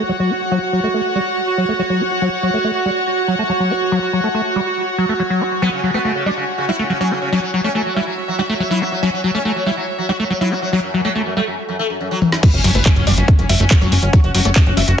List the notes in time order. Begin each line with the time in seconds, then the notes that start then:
Already playing: F#4 C#5 F#5
0.09 F#3
0.20 F#3
0.30 F#4
0.52 F#3
0.73 F#3
0.83 A3
0.94 A3
1.15 G3
1.58 F#3
1.69 A3
1.79 F#3
1.90 F#3
2.00 F#4
2.22 F#3
2.43 F#3
2.54 A3
2.64 A3
2.86 G3
3.28 F#3
3.39 A3
3.49 F#3
3.60 F#3
3.71 F#4
3.92 F#3
4.13 F#3
4.24 A3
4.34 A3
4.56 G3
4.98 F#3
5.09 A3
5.20 F#3
5.30 F#3
5.41 F#4
5.62 F#3 B3
5.73 C#3
5.83 C#3 F#3
5.94 A3 B3
6.05 C#3 A3
6.15 C#3
6.26 G3 D4
6.37 C#3
6.58 C#3
6.69 G3 E4
6.79 C#3 A3
6.90 C#3 F#3
7.00 F#3 C#4
7.11 C#3 F#4
7.22 C#3
7.32 F#3 C#4
7.43 F#3
7.52 F#3 E5
7.64 A3 C#4
7.75 F#3 A3
7.86 F#3
7.96 G3 E4
8.07 F#3
8.28 F#3
8.39 G3 F#4
8.49 F#3 A3
8.60 F#3
8.71 F#3 E4
8.81 F#3 F#4
8.92 F#3
9.03 F#3 C#4
9.13 F#3
9.24 F#3
9.35 A3 C#4
9.45 F#3 A3
9.56 F#3
9.66 G3 E4
9.77 F#3
9.98 F#3
10.09 G3 F#4
10.20 F#3 A3
10.30 F#3
10.41 F#3 E4
10.51 F#3 F#4
10.62 F#3
10.73 F#3
10.83 F#2
10.94 F#2 F#3
11.05 F#3 A3
11.15 F#2 A3
11.26 F#2
11.37 G3 A3
11.47 F#2
11.69 F#2
11.79 A3
11.90 F#2
12.01 F#2
12.11 F#3
12.22 F#2, high tom
12.32 F#2, snare
12.43 F#3 C#4 B4, kick, closed hi-hat, crash, impact
12.54 F#1 C#4, closed hi-hat
12.64 F#1 F#3 C#4, open hi-hat
12.71 F#5
12.75 F#1 A3 B4, closed hi-hat
12.86 A3 C#4, kick, clap, closed hi-hat
12.96 F#1 C#4, closed hi-hat
13.07 F#1 G3 D5, open hi-hat
13.17 F#1 C#4, closed hi-hat
13.28 kick, closed hi-hat
13.39 F#1 C#4, closed hi-hat
13.49 F#1 G3 E5, open hi-hat
13.60 F#1 A3 C#4, closed hi-hat
13.71 F#3 C#4, kick, clap, closed hi-hat
13.81 F#1 F#3 C#5, closed hi-hat
13.92 F#1 C#4 F#4, open hi-hat
14.03 F#1 C#4, closed hi-hat
14.13 F#3 C#5, kick, closed hi-hat
14.24 F#1 F#4, closed hi-hat
14.35 F#1 F#3 F#4, open hi-hat
14.45 F#1 A3 C#5, closed hi-hat
14.56 A3 F#4, kick, clap, closed hi-hat
14.66 F#1 F#4, closed hi-hat
14.77 F#1 G3 E5, open hi-hat
14.88 F#1 F#4, closed hi-hat